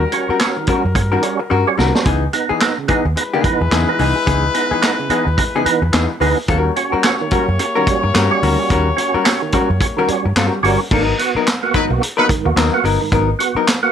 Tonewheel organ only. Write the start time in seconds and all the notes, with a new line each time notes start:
0.12 C#4 F#4
0.40 C#4 F#4
0.56 D#3
0.68 C#4 F#4
0.95 C#4 F#4
1.12 D#3
1.23 G3 C#4 F#4
1.67 G3 C#4 F#4
1.78 D#3
1.94 G3 C#4 F#4
2.06 C#3
2.33 B3 D#4
2.61 B3 D#4
2.78 C#3
2.88 B3 D#4
3.17 B3 D#4
3.34 C#3
3.44 E3 B3 D#4
3.72 C#3
3.88 E3 B3 D#4
4.00 B3 D#4
4.27 C#3
4.54 B3 D#4
4.82 B3 D#4
4.99 C#3
5.10 B3 D#4
5.38 B3 D#4
5.55 C#3
5.65 E3 B3 D#4
6.21 E3 B3 D#4
6.50 D#3
6.76 C#4 F#4
7.04 C#4 F#4
7.21 D#3
7.32 C#4 F#4
7.60 C#4 F#4
7.76 D#3
7.87 G3 C#4 F#4
8.31 G3 C#4 F#4
8.43 D#3
8.58 G3 C#4 F#4
8.70 D#3
8.97 C#4 F#4
9.24 C#4 F#4
9.42 D#3
9.53 C#4 F#4
9.80 C#4 F#4
9.97 D#3
10.08 G3 C#4 F#4
10.63 G3 C#4 F#4
10.91 G#2 D#3
11.19 B3 F#4
11.63 A#3 B3 F#4
11.74 G#2 D#3
11.90 A#3 B3 F#4
12.19 A#3 B3 F#4
12.29 G#2 D#3
12.45 A#3 B3 F#4
12.73 A#3 B3 F#4
13.01 G#2 D#3
13.12 G#2 D#3
13.39 B3 F#4
13.83 A#3 B3 F#4